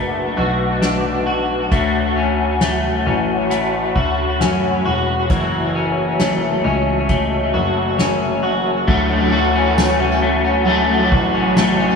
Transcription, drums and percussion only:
0.82 snare, closed hi-hat
1.71 kick, closed hi-hat
2.61 snare, closed hi-hat
3.51 closed hi-hat
3.96 kick
4.40 snare, closed hi-hat
5.30 kick, closed hi-hat
6.19 snare, closed hi-hat
7.09 kick, closed hi-hat
7.99 snare, closed hi-hat
8.88 kick, crash
9.78 snare, tambourine
10.67 ride
11.12 kick
11.57 snare, tambourine

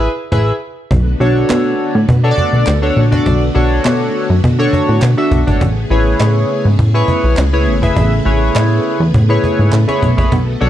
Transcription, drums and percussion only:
0.32 cajon bass, cajon slap
0.91 cajon bass
1.07 cajon slap
1.20 cajon slap
1.37 cajon slap
1.50 cajon slap, clap
1.65 cajon slap
1.95 cajon slap
2.09 cajon bass
2.25 cajon slap
2.38 cajon bass
2.54 cajon slap
2.67 cajon slap, clap
2.83 cajon slap
3.12 cajon bass
3.26 cajon bass
3.42 cajon slap
3.55 cajon slap
3.72 cajon slap
3.85 cajon slap, clap
4.00 cajon slap
4.30 cajon slap
4.44 cajon bass
4.73 cajon bass
4.89 cajon slap
5.02 cajon slap, clap
5.32 cajon bass
5.48 cajon bass
5.61 cajon bass
5.77 cajon slap
5.90 cajon slap
6.06 cajon slap
6.20 cajon slap, clap
6.35 cajon slap
6.65 cajon slap
6.79 cajon bass
7.08 cajon bass
7.24 cajon slap
7.37 cajon slap, clap
7.53 cajon slap
7.83 cajon bass
7.96 cajon bass
8.12 cajon slap
8.25 cajon slap
8.42 cajon slap
8.56 cajon slap, clap
8.70 cajon slap
9.01 cajon slap
9.14 cajon bass
9.31 cajon slap
9.44 cajon bass
9.59 cajon slap
9.72 cajon slap, clap
9.89 cajon slap
10.03 cajon bass
10.18 cajon bass
10.32 cajon bass
10.48 cajon slap
10.61 cajon slap

